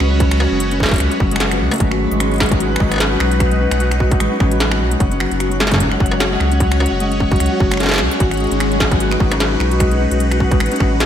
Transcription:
Already playing: harp F#3 G#3 F#4, analog synth pad C#4 F#4 C#5 F#5, synth texture B4
0.00 sub bass C#2, harp C#4, finger snap
0.11 harp F#3
0.20 harp F#3, kick, closed hi-hat
0.31 harp F#4, finger snap, closed hi-hat
0.40 harp F#3, struck metal
0.51 sub bass F#1, harp G#3
0.60 harp C#4, closed hi-hat
0.71 harp C#4, closed hi-hat
0.80 harp F#3, kick, snare
0.86 snare
0.89 snare
0.91 harp F#3, kick, snare, closed hi-hat
0.94 snare, closed hi-hat
0.96 snare, closed hi-hat
0.98 sub bass C#2, finger snap, snare, closed hi-hat
1.00 harp F#4, closed hi-hat
1.11 harp F#3, closed hi-hat
1.20 sub bass F#1, harp F#3, kick
1.31 harp G#3, closed hi-hat
1.36 finger snap
1.40 harp F#3, snare, closed hi-hat
1.51 harp F3, finger snap, closed hi-hat
1.60 sub bass C#2, harp C#3
1.71 harp A3, closed hi-hat, struck metal
1.74 closed hi-hat
1.76 closed hi-hat
1.78 synth texture F#5, closed hi-hat
1.80 sub bass G#1, harp F#3, analog synth pad G#3, kick, closed hi-hat
1.91 harp F#4, finger snap
2.00 harp F#3
2.05 analog synth pad D#4
2.11 sub bass G#1, harp G#3, analog synth pad B4, closed hi-hat
2.20 harp C#4, finger snap, closed hi-hat
2.31 harp C#4, closed hi-hat
2.34 closed hi-hat
2.36 closed hi-hat
2.38 harp F#3, finger snap, kick, snare, closed hi-hat
2.40 closed hi-hat
2.43 closed hi-hat
2.46 closed hi-hat
2.49 harp F#3, kick, closed hi-hat
2.52 closed hi-hat
2.60 harp F#4, closed hi-hat
2.71 harp F#3
2.76 finger snap
2.80 sub bass G#1, harp G#3, kick
2.92 harp C#4, finger snap, closed hi-hat, struck metal
2.94 struck metal
2.96 struck metal
2.98 harp C#4, snare, closed hi-hat, struck metal
3.11 harp F#3
3.20 sub bass B1, harp F#3, finger snap
3.31 harp F#4, closed hi-hat
3.40 harp F#3, finger snap, kick, closed hi-hat
3.51 harp G#3, closed hi-hat
3.60 harp C#4
3.71 sub bass B1, harp C#4, finger snap, closed hi-hat
3.80 harp F#3, closed hi-hat
3.91 harp F#3, finger snap, closed hi-hat
4.00 harp F#4, kick
4.11 harp F#3, kick, closed hi-hat
4.20 sub bass A1, harp G#3, finger snap, closed hi-hat
4.31 harp C#4
4.40 sub bass A1, harp C#4, finger snap, kick
4.52 harp F#3, closed hi-hat
4.60 harp F#3, snare, closed hi-hat
4.71 harp F#4, finger snap
4.80 sub bass B1, harp F#3
4.91 harp G#3, closed hi-hat
5.00 sub bass F#1, harp C#4, kick, closed hi-hat
5.09 analog synth pad C#4, harp C#4, closed hi-hat
5.20 harp F#3, finger snap
5.27 analog synth pad C#5
5.32 sub bass F#1, harp F#3, closed hi-hat
5.40 harp F#4, finger snap, closed hi-hat
5.52 harp F#3, closed hi-hat
5.60 harp G#3, snare
5.67 snare
5.71 harp C#4, kick, snare, closed hi-hat
5.74 kick
5.76 kick
5.78 harp C#4, kick, closed hi-hat
5.80 kick
5.83 kick
5.86 kick
5.89 harp F#3, finger snap, kick
6.00 sub bass F#1, harp F#3, kick
6.06 closed hi-hat
6.12 harp F#4, struck metal
6.20 harp F#3, finger snap, snare, closed hi-hat
6.32 harp G#3
6.40 sub bass C#2, harp C#4, finger snap
6.52 harp C#4, closed hi-hat
6.60 harp F#3, kick, closed hi-hat
6.72 harp F#3, finger snap, closed hi-hat
6.80 harp F#4, struck metal
6.86 closed hi-hat
6.92 sub bass F#1, harp F#3
7.00 harp G#3, closed hi-hat
7.12 harp C#4, closed hi-hat
7.20 harp C#4, kick
7.32 harp F#3, kick, closed hi-hat
7.36 closed hi-hat
7.40 sub bass C#2, harp F#3, finger snap, closed hi-hat
7.46 closed hi-hat
7.52 harp F#4
7.60 sub bass F#1, harp F#3, kick
7.71 harp G#3, finger snap, closed hi-hat
7.74 finger snap
7.77 harp C#4, finger snap, snare, closed hi-hat
7.83 snare
7.86 snare
7.89 finger snap, snare
7.91 harp C#4, snare
7.94 snare
7.96 snare
7.98 sub bass C#2, harp F#3, snare
8.11 harp F#3, closed hi-hat
8.20 sub bass G#1, analog synth pad G#3, harp F#4, kick, closed hi-hat
8.31 harp F#4, finger snap, closed hi-hat
8.34 analog synth pad D#4, closed hi-hat
8.37 analog synth pad F#5, closed hi-hat
8.40 harp G#3, closed hi-hat
8.47 closed hi-hat
8.51 sub bass G#1, harp C#4, closed hi-hat
8.57 harp C#4, analog synth pad F#4, finger snap, closed hi-hat
8.72 harp F#3, closed hi-hat
8.80 harp F#3, finger snap, kick, snare
8.91 harp F#4, analog synth pad B4, kick, closed hi-hat
9.00 harp F#4, closed hi-hat
9.11 harp G#3, finger snap
9.20 sub bass G#1, harp C#4, kick
9.32 harp C#4, finger snap, closed hi-hat, struck metal
9.40 harp F#3, snare, closed hi-hat
9.51 harp F#3
9.60 sub bass B1, harp F#4, finger snap
9.71 harp F#4, closed hi-hat
9.80 harp G#3, finger snap, kick, closed hi-hat
9.91 harp C#4, closed hi-hat
10.00 harp C#4
10.11 sub bass B1, harp F#3, closed hi-hat
10.20 harp F#3, closed hi-hat
10.31 harp F#4, finger snap, closed hi-hat
10.40 harp F#4, kick
10.51 harp G#3, kick, closed hi-hat
10.60 sub bass A1, harp C#4, finger snap, closed hi-hat
10.66 closed hi-hat
10.72 harp C#4, closed hi-hat
10.76 closed hi-hat
10.80 sub bass A1, harp F#3, finger snap, kick
10.92 harp F#3
11.00 harp F#4, snare, closed hi-hat

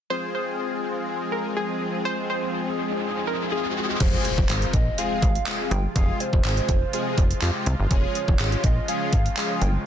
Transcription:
0.10 supersaw synth F3 G#3 C4 G#4, analog polysynth G#3 C4 F4 G#4, synth pluck C5, riser
0.35 synth pluck C5
1.32 synth pluck A#4
1.57 synth pluck G#4
2.05 synth pluck C5
2.30 synth pluck C5
3.27 synth pluck A#4
3.52 synth pluck G#4
4.00 analog synth bass F1, analog polysynth G#3 C4 F4 G#4, soft synth lead C5, kick, closed hi-hat, crash, impact
4.25 closed hi-hat
4.38 analog synth bass F1, kick
4.49 analog synth bass G#1, analog polysynth G#3 C4 F4 A#4, clap, closed hi-hat
4.62 closed hi-hat
4.73 analog synth bass A#1, soft synth lead D#5, kick, closed hi-hat
4.98 analog polysynth G#3 C4 F4 G#4, soft synth lead F5, closed hi-hat
5.22 analog synth bass G#1, kick, closed hi-hat
5.35 closed hi-hat
5.47 analog polysynth G#3 C4 F4 G#4, clap, closed hi-hat
5.71 analog synth bass G1, soft synth lead G5, closed hi-hat
5.95 analog synth bass F1, analog polysynth G#3 C4 F4 G#4, soft synth lead F5, kick, closed hi-hat
6.20 soft synth lead C5, closed hi-hat
6.33 analog synth bass F1, kick
6.44 analog synth bass G#1, analog polysynth G#3 C4 F4 G#4, soft synth lead C5, clap, closed hi-hat
6.57 closed hi-hat
6.69 analog synth bass F1, kick, closed hi-hat
6.93 analog polysynth G#3 C4 F4 G#4, closed hi-hat
7.18 analog synth bass F1, kick, closed hi-hat
7.31 closed hi-hat
7.42 analog synth bass F2, analog polysynth G#3 C4 F4 G4, clap, closed hi-hat
7.66 analog synth bass C2, closed hi-hat
7.79 analog synth bass G1
7.91 analog synth bass F1, supersaw synth C#3, analog polysynth G#3 C#4 F4 G#4, soft synth lead C#5, kick, closed hi-hat
8.15 closed hi-hat
8.28 analog synth bass F1, kick
8.39 analog synth bass G#1, analog polysynth G#3 C#4 F4 G4, clap, closed hi-hat
8.52 closed hi-hat
8.64 analog synth bass A#1, soft synth lead D#5, kick, closed hi-hat
8.88 analog polysynth G#3 C#4 F4 G#4, soft synth lead F5, closed hi-hat
9.13 analog synth bass G#1, kick, closed hi-hat
9.26 closed hi-hat
9.37 analog polysynth G#3 C#4 F4 G#4, clap, closed hi-hat
9.61 analog synth bass G1, soft synth lead G5, closed hi-hat

